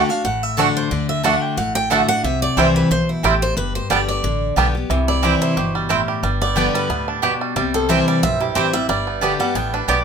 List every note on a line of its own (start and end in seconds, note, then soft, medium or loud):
0.09 0.25 D4 medium
0.09 0.24 F#4 medium
0.09 0.24 F5 medium
0.24 0.69 A1 medium
0.24 0.88 A2 medium
0.24 0.43 F#5 medium
0.43 0.58 E5 loud
0.57 0.89 D3 medium
0.57 0.68 A3 medium
0.57 0.90 A3 medium
0.57 0.67 A3 medium
0.57 0.90 D4 medium
0.57 0.67 D4 medium
0.57 0.68 F#4 loud
0.57 0.91 F#4 medium
0.57 0.68 D5 medium
0.57 0.76 D5 medium
0.57 0.68 F#5 medium
0.77 0.91 C5 medium
0.91 1.35 D2 loud
0.91 1.22 D3 medium
0.91 1.09 D5 medium
1.09 1.24 E5 medium
1.23 1.56 D3 medium
1.23 1.34 A3 medium
1.23 1.56 A3 medium
1.23 1.33 A3 medium
1.23 1.57 D4 medium
1.23 1.33 D4 medium
1.23 1.34 F#4 loud
1.23 1.57 F#4 medium
1.23 1.34 D5 medium
1.23 1.43 F#5 medium
1.23 1.35 F#5 loud
1.43 1.57 G5 medium
1.57 2.01 A1 medium
1.57 2.21 A2 medium
1.57 1.75 F#5 medium
1.75 1.90 G5 loud
1.90 2.08 D3 medium
1.90 2.00 A3 medium
1.90 2.09 A3 medium
1.90 1.99 A3 medium
1.90 2.09 D4 medium
1.90 2.00 D4 medium
1.90 2.01 F#4 loud
1.90 2.08 F#4 medium
1.90 2.01 D5 medium
1.90 2.08 E5 medium
1.90 2.01 F#5 loud
2.08 2.25 D4 medium
2.08 2.24 F#4 medium
2.08 2.24 F#5 loud
2.24 2.46 C2 loud
2.24 2.88 C3 medium
2.24 2.42 E5 medium
2.42 2.57 D5 loud
2.57 2.85 C2 medium
2.57 2.89 E3 medium
2.57 2.89 G3 medium
2.57 2.66 G3 medium
2.57 2.67 C4 loud
2.57 2.90 C4 medium
2.57 2.66 C4 medium
2.57 2.67 E4 loud
2.57 2.66 E4 medium
2.57 2.90 E4 medium
2.57 2.75 C5 medium
2.57 2.68 C5 loud
2.57 2.68 G5 loud
2.76 2.91 B4 medium
2.90 3.19 B1 medium
2.90 3.23 B2 medium
2.90 3.09 C5 loud
3.09 3.24 E4 medium
3.23 3.52 A1 medium
3.23 3.56 A2 loud
3.23 3.32 G3 medium
3.23 3.34 C4 medium
3.23 3.33 C4 medium
3.23 3.34 E4 medium
3.23 3.33 E4 medium
3.23 3.42 G4 medium
3.23 3.34 C5 loud
3.23 3.34 G5 loud
3.42 3.56 C5 loud
3.57 3.79 G1 loud
3.57 4.21 G2 loud
3.57 3.75 B4 medium
3.75 3.90 C5 medium
3.90 4.19 G1 medium
3.90 4.22 D3 medium
3.90 4.22 G3 medium
3.90 3.99 G3 medium
3.90 4.00 B3 medium
3.90 4.23 B3 medium
3.90 3.99 B3 medium
3.90 3.99 D4 medium
3.90 4.00 G4 loud
3.90 4.23 G4 medium
3.90 4.07 D5 medium
3.90 4.00 D5 loud
3.90 4.01 G5 loud
4.09 4.54 D5 medium
4.23 4.52 A1 medium
4.23 4.55 D3 medium
4.56 4.85 B1 medium
4.56 4.74 D3 medium
4.56 4.74 G3 medium
4.56 4.65 G3 medium
4.56 4.66 B3 medium
4.56 4.75 B3 medium
4.56 4.65 B3 medium
4.56 4.66 D4 medium
4.56 4.67 G4 medium
4.56 4.73 G4 loud
4.56 4.67 D5 medium
4.56 4.67 G5 loud
4.75 4.91 B3 soft
4.75 4.89 G4 soft
4.90 5.34 C2 loud
4.90 5.54 C3 medium
4.90 5.38 E3 medium
5.08 5.40 E4 medium
5.08 5.39 D5 medium
5.23 5.55 E3 medium
5.23 5.55 G3 medium
5.23 5.33 C4 medium
5.23 5.56 C4 medium
5.23 5.33 E4 medium
5.23 5.56 E4 medium
5.23 5.57 G4 medium
5.23 5.33 C5 medium
5.23 5.33 G5 loud
5.42 5.87 E4 medium
5.42 5.72 C5 medium
5.56 6.00 G1 medium
5.56 5.89 B2 medium
5.56 6.08 G4 medium
5.75 6.23 G3 medium
5.89 6.22 A2 medium
5.89 5.99 C4 medium
5.89 5.99 E4 medium
5.89 6.23 E4 medium
5.89 6.00 C5 loud
5.89 6.00 G5 loud
6.08 7.23 G4 medium
6.23 6.67 G1 loud
6.23 6.87 G2 medium
6.23 6.74 G3 medium
6.42 6.87 B3 medium
6.42 6.72 D5 medium
6.55 6.88 D3 medium
6.55 6.88 G3 medium
6.55 6.66 B3 medium
6.55 6.89 B3 loud
6.55 7.04 D4 medium
6.55 6.66 G4 medium
6.55 6.89 G4 loud
6.55 6.66 D5 medium
6.55 6.66 G5 loud
6.75 7.41 G3 medium
6.75 7.06 B4 loud
6.89 7.33 D2 medium
6.89 7.21 A2 medium
6.89 7.37 B3 medium
7.08 7.53 D4 medium
7.22 7.55 B2 medium
7.22 7.32 B3 medium
7.22 7.32 G4 loud
7.22 8.56 G4 medium
7.22 7.33 D5 medium
7.22 7.33 G5 loud
7.41 7.56 G3 medium
7.56 8.00 C2 medium
7.56 8.19 C3 loud
7.56 8.08 G3 medium
7.56 7.74 G4 medium
7.74 8.20 C4 medium
7.74 7.89 A4 loud
7.89 8.21 E3 medium
7.89 8.21 G3 medium
7.89 7.99 C4 medium
7.89 8.22 C4 medium
7.89 7.99 E4 loud
7.89 8.37 E4 medium
7.89 8.22 E4 loud
7.89 7.99 C5 loud
7.89 8.07 C5 medium
7.89 7.99 G5 loud
8.08 8.74 G3 medium
8.08 8.22 D5 medium
8.22 8.51 B1 medium
8.22 8.86 G2 medium
8.22 8.71 C4 medium
8.22 8.40 E5 loud
8.40 8.86 E4 medium
8.40 8.55 G4 medium
8.55 8.84 A1 medium
8.55 8.73 E3 medium
8.55 8.73 G3 medium
8.55 8.65 C4 medium
8.55 8.74 C4 medium
8.55 8.65 E4 medium
8.55 8.72 E4 medium
8.55 9.89 G4 medium
8.55 8.73 C5 medium
8.55 8.66 C5 loud
8.55 8.66 G5 loud
8.73 8.89 G3 medium
8.73 8.89 C4 soft
8.73 8.88 E4 medium
8.73 8.88 E5 loud
8.89 9.33 G1 medium
8.89 9.52 G2 medium
8.89 9.40 G3 medium
8.89 9.37 D5 medium
9.07 9.52 B3 medium
9.21 9.39 D3 medium
9.21 9.40 G3 medium
9.21 9.32 B3 medium
9.21 9.40 B3 medium
9.21 9.70 D4 medium
9.21 9.32 G4 medium
9.21 9.38 G4 medium
9.21 9.32 D5 loud
9.21 9.32 G5 loud
9.39 10.04 G3 medium
9.39 9.56 B3 medium
9.39 9.54 G4 medium
9.39 9.55 F#5 medium
9.55 9.83 A1 medium
9.55 9.87 A2 medium
9.55 10.03 B3 medium
9.55 9.73 G5 loud
9.74 10.04 D4 medium
9.74 9.88 B4 medium
9.88 10.04 B1 medium
9.88 10.04 B2 medium
9.88 9.98 B3 medium
9.88 9.98 G4 loud
9.88 10.04 G4 medium
9.88 10.04 D5 medium
9.88 9.98 D5 medium
9.88 9.99 G5 loud